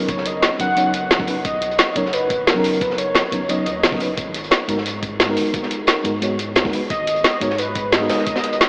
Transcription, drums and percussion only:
0.08 kick, closed hi-hat
0.18 snare
0.26 closed hi-hat
0.42 snare, closed hi-hat
0.60 kick, closed hi-hat
0.77 closed hi-hat
0.94 closed hi-hat
1.11 snare, closed hi-hat
1.20 kick, snare
1.27 closed hi-hat, open hi-hat
1.45 kick, closed hi-hat
1.62 closed hi-hat
1.71 closed hi-hat
1.78 snare, closed hi-hat
1.96 kick, closed hi-hat
2.06 snare
2.13 closed hi-hat
2.30 kick, closed hi-hat
2.47 snare, closed hi-hat
2.64 closed hi-hat, open hi-hat
2.73 closed hi-hat
2.81 kick, closed hi-hat
2.91 snare
2.98 closed hi-hat
3.15 snare, closed hi-hat
3.32 kick, closed hi-hat
3.49 closed hi-hat
3.66 closed hi-hat
3.83 snare, closed hi-hat
3.92 kick, snare
4.00 closed hi-hat, open hi-hat
4.17 kick, closed hi-hat
4.34 closed hi-hat
4.44 closed hi-hat
4.51 snare, closed hi-hat
4.69 kick, closed hi-hat
4.78 snare
4.86 closed hi-hat
5.03 kick, closed hi-hat
5.20 snare, closed hi-hat
5.37 closed hi-hat, open hi-hat
5.45 closed hi-hat
5.54 kick, closed hi-hat
5.63 snare
5.71 closed hi-hat
5.87 snare, closed hi-hat
6.05 kick, closed hi-hat
6.22 closed hi-hat
6.39 closed hi-hat
6.56 snare, closed hi-hat
6.65 kick, snare
6.73 closed hi-hat, open hi-hat
6.90 kick, closed hi-hat
7.07 closed hi-hat
7.16 closed hi-hat
7.24 snare, closed hi-hat
7.41 kick, closed hi-hat
7.50 snare
7.58 closed hi-hat
7.75 kick, closed hi-hat
7.92 snare, closed hi-hat
8.10 snare, closed hi-hat, open hi-hat
8.18 snare
8.27 kick, closed hi-hat
8.36 snare, closed hi-hat
8.44 snare, closed hi-hat
8.53 closed hi-hat
8.61 snare, closed hi-hat

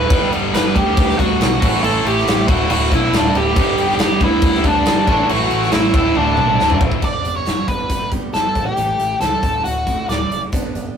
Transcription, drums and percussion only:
0.10 kick, crash
0.33 crash
0.54 snare, crash
0.76 kick, crash
0.97 kick, crash
1.10 snare
1.19 kick, crash
1.41 snare, crash
1.62 kick, crash
1.84 crash
2.06 crash
2.18 snare
2.27 snare, crash
2.48 kick, crash
2.70 crash
2.92 kick, crash
3.13 snare, crash
3.35 crash
3.56 kick, crash
3.78 crash
3.90 snare
3.99 snare, crash
4.21 kick, crash
4.42 kick, crash
4.54 snare
4.64 kick, crash
4.86 snare, crash
5.07 kick, crash
5.29 crash
5.51 crash
5.62 snare
5.72 snare, crash
5.94 kick, crash
6.15 high tom
6.37 mid tom
6.60 snare
6.70 mid tom
6.81 kick
6.92 kick
7.02 kick, crash
7.25 closed hi-hat
7.46 snare, closed hi-hat
7.68 kick, closed hi-hat
7.89 kick, closed hi-hat
8.11 kick, closed hi-hat
8.34 snare, closed hi-hat
8.55 kick, closed hi-hat
8.77 closed hi-hat
8.99 closed hi-hat
9.21 snare, closed hi-hat
9.43 kick, closed hi-hat
9.65 closed hi-hat
9.87 kick, closed hi-hat
10.09 snare, closed hi-hat
10.32 closed hi-hat
10.53 kick, closed hi-hat
10.75 closed hi-hat

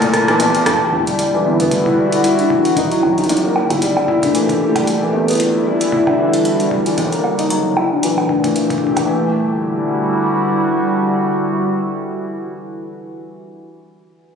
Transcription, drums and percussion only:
0.02 kick, closed hi-hat
0.14 cross-stick, closed hi-hat
0.28 cross-stick, closed hi-hat
0.40 closed hi-hat
0.55 closed hi-hat
0.66 cross-stick, closed hi-hat
1.07 closed hi-hat
1.19 closed hi-hat
1.60 closed hi-hat
1.71 kick, closed hi-hat
1.86 kick
2.12 closed hi-hat
2.24 closed hi-hat
2.39 closed hi-hat
2.50 kick
2.65 closed hi-hat
2.77 kick, closed hi-hat
2.91 closed hi-hat
3.03 high bongo
3.18 closed hi-hat
3.24 closed hi-hat
3.29 closed hi-hat
3.37 closed hi-hat
3.56 high bongo
3.70 closed hi-hat, high bongo
3.82 closed hi-hat
3.97 high bongo
4.08 kick
4.23 kick, closed hi-hat
4.35 closed hi-hat
4.49 kick, closed hi-hat
4.76 kick, closed hi-hat, high bongo
4.87 closed hi-hat
5.28 closed hi-hat
5.31 closed hi-hat
5.33 closed hi-hat
5.35 closed hi-hat
5.38 closed hi-hat
5.40 closed hi-hat
5.81 closed hi-hat
5.92 kick
6.07 kick, high bongo
6.33 closed hi-hat
6.45 closed hi-hat
6.60 closed hi-hat
6.71 kick
6.86 closed hi-hat
6.98 kick, closed hi-hat
7.12 closed hi-hat
7.24 high bongo
7.39 closed hi-hat
7.50 closed hi-hat
7.77 high bongo
8.03 closed hi-hat
8.18 high bongo
8.29 kick
8.44 kick, closed hi-hat
8.56 closed hi-hat
8.70 kick, closed hi-hat
8.78 kick
8.87 kick
8.97 kick, closed hi-hat, high bongo

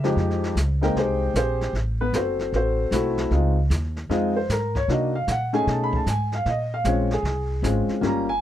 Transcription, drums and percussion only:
0.04 snare
0.17 brush sweep, snare
0.30 snare
0.43 snare
0.57 snare, hi-hat pedal
0.82 snare
0.96 brush sweep, snare
1.35 snare, hi-hat pedal
1.61 snare
1.74 brush sweep, snare
2.13 snare, hi-hat pedal
2.39 snare
2.53 brush sweep, snare
2.92 snare, hi-hat pedal
3.17 snare
3.31 brush sweep, snare
3.71 snare, hi-hat pedal
3.96 snare
4.11 brush sweep, snare
4.50 snare, hi-hat pedal
4.75 kick, snare
4.89 brush sweep, snare
5.28 snare, hi-hat pedal
5.53 snare
5.67 brush sweep, snare
5.93 kick
6.06 snare, hi-hat pedal
6.32 snare
6.46 brush sweep, snare
6.85 snare, hi-hat pedal
7.10 snare
7.25 brush sweep, snare
7.64 snare, hi-hat pedal
7.89 snare
8.03 brush sweep, snare

